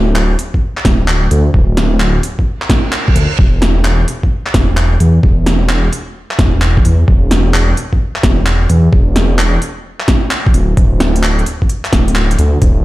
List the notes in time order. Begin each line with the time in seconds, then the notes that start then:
Already playing: D1
0.16 clap
0.39 open hi-hat
0.54 kick
0.77 clap
0.85 D1, kick, snare, open hi-hat
1.08 clap
1.31 D2, open hi-hat
1.54 D1, kick
1.77 snare, open hi-hat
2.00 clap
2.23 open hi-hat
2.39 kick
2.46 reverse cymbal
2.62 clap
2.70 kick, snare, open hi-hat
2.93 clap
3.08 kick
3.16 D2, open hi-hat
3.39 E1, kick
3.62 snare, open hi-hat
3.85 clap
4.08 open hi-hat
4.23 kick
4.46 clap
4.54 E1, kick, snare, open hi-hat
4.77 clap
5.00 E2, open hi-hat
5.23 E1, kick
5.46 snare, open hi-hat
5.69 clap
5.93 open hi-hat
6.31 clap
6.39 E1, kick, snare, open hi-hat
6.62 clap
6.77 kick
6.85 E2, open hi-hat
7.08 E1, kick
7.31 snare, open hi-hat
7.54 clap
7.77 open hi-hat
7.93 kick
8.16 clap
8.23 E1, kick, snare, open hi-hat
8.46 clap
8.69 E2, open hi-hat
8.93 E1, kick
9.16 snare, open hi-hat
9.39 clap
9.62 open hi-hat
10.00 clap
10.08 kick, snare, open hi-hat
10.31 clap
10.47 kick
10.54 D1, open hi-hat
10.77 D1, kick, closed hi-hat
11.00 snare, open hi-hat
11.16 closed hi-hat
11.23 clap
11.39 closed hi-hat
11.46 open hi-hat
11.62 kick
11.69 closed hi-hat
11.85 clap, closed hi-hat
11.93 D1, kick, snare, open hi-hat
12.08 closed hi-hat
12.16 clap
12.31 closed hi-hat
12.39 D2, open hi-hat
12.62 D1, kick, closed hi-hat